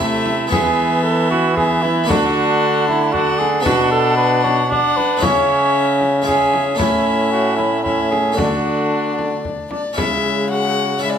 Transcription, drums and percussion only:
0.00 frame drum
0.26 frame drum
0.52 frame drum
1.32 frame drum
1.57 frame drum
1.85 frame drum
2.10 frame drum
2.88 frame drum
3.14 frame drum
3.41 frame drum
3.66 frame drum
4.45 frame drum
4.72 frame drum
4.97 frame drum
5.22 frame drum
6.01 frame drum
6.28 frame drum
6.53 frame drum
6.79 frame drum
7.59 frame drum
7.86 frame drum
8.12 frame drum
8.38 frame drum
9.19 frame drum
9.45 frame drum
9.71 frame drum
9.98 frame drum

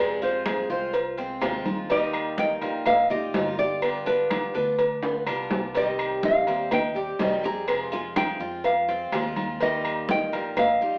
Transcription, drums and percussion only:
0.22 high conga, low agogo
0.46 cowbell, high conga, low timbale, low agogo, claves
0.70 high conga
0.93 cowbell, high conga, low agogo
1.18 cowbell, high conga
1.42 cowbell, high conga, low timbale, low agogo, claves
1.66 high conga, low agogo
1.90 cowbell, high conga, low agogo
2.13 high conga, low agogo, claves
2.38 cowbell, high conga, low timbale
2.62 cowbell, high conga, low agogo
2.86 cowbell, high conga, low conga, low agogo, claves
3.10 high conga, low conga
3.34 cowbell, high conga, low timbale, low agogo
3.58 high conga
3.82 cowbell, high conga, low agogo, claves
4.06 high conga, low agogo
4.30 cowbell, high conga, low timbale, low agogo, claves
4.55 high conga
4.78 cowbell, high conga, low agogo
5.03 cowbell, high conga, high timbale
5.27 cowbell, high conga, low agogo, claves
5.51 high conga, low timbale, low agogo
5.75 cowbell, high conga, low agogo
5.99 high conga, low agogo, claves
6.23 cowbell, high conga, low timbale
6.47 cowbell, high conga, low agogo
6.71 cowbell, high conga, low conga, low agogo, claves
6.96 high conga
7.19 cowbell, high conga, low timbale, low agogo
7.44 high conga
7.68 cowbell, high conga, low agogo, claves
7.92 high conga, low agogo
8.16 cowbell, high conga, low timbale, low agogo, claves
8.40 high conga
8.64 cowbell, high conga, low agogo
8.88 cowbell, high conga
9.12 cowbell, high conga, low timbale, low agogo, claves
9.36 high conga, low agogo
9.60 cowbell, high conga, low agogo
9.85 high conga, low agogo, claves
10.09 cowbell, high conga, low timbale
10.33 cowbell, high conga, low agogo
10.57 cowbell, high conga, low conga, low agogo, claves
10.81 high conga

